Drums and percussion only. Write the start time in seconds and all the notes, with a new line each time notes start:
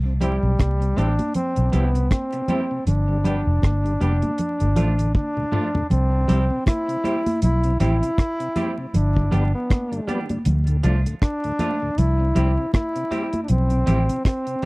0.21 closed hi-hat, low conga
0.59 kick, cross-stick, closed hi-hat, high conga
0.82 closed hi-hat
0.97 closed hi-hat, high conga
1.19 closed hi-hat, high conga
1.34 closed hi-hat, low conga
1.56 closed hi-hat
1.73 closed hi-hat, low conga
1.95 closed hi-hat
2.11 kick, cross-stick, closed hi-hat, high conga
2.33 closed hi-hat
2.48 closed hi-hat, high conga, low conga
2.86 closed hi-hat, low conga
3.24 closed hi-hat, low conga
3.62 kick, cross-stick, closed hi-hat, high conga
3.86 closed hi-hat
4.01 closed hi-hat, high conga
4.22 closed hi-hat, high conga
4.38 closed hi-hat, low conga
4.60 closed hi-hat
4.76 closed hi-hat, low conga
4.99 closed hi-hat
5.15 kick, high tom, high conga
5.37 mid tom
5.52 mid tom, high conga, low conga
5.75 floor tom
5.90 closed hi-hat, low conga
6.28 closed hi-hat, low conga
6.66 kick, cross-stick, closed hi-hat, high conga
6.89 closed hi-hat
7.04 closed hi-hat, high conga
7.26 closed hi-hat, high conga
7.42 closed hi-hat, low conga
7.63 closed hi-hat
7.80 closed hi-hat, low conga
8.03 closed hi-hat
8.18 kick, cross-stick, closed hi-hat
8.40 closed hi-hat
8.56 closed hi-hat, high conga, low conga
8.94 closed hi-hat, low conga
9.16 kick
9.32 closed hi-hat, low conga
9.70 kick, cross-stick, closed hi-hat, high conga
9.93 closed hi-hat
10.08 closed hi-hat, high conga
10.29 closed hi-hat, high conga
10.45 closed hi-hat, low conga
10.67 closed hi-hat
10.83 closed hi-hat, low conga
11.06 closed hi-hat
11.22 kick, cross-stick, closed hi-hat
11.44 closed hi-hat
11.59 closed hi-hat, high conga, low conga
11.98 closed hi-hat, low conga
12.35 closed hi-hat, low conga
12.73 kick, cross-stick, closed hi-hat, high conga
12.96 closed hi-hat
13.11 closed hi-hat, high conga
13.33 closed hi-hat, high conga
13.48 closed hi-hat, low conga
13.70 closed hi-hat
13.87 closed hi-hat, low conga
14.09 closed hi-hat
14.25 kick, cross-stick, closed hi-hat
14.47 closed hi-hat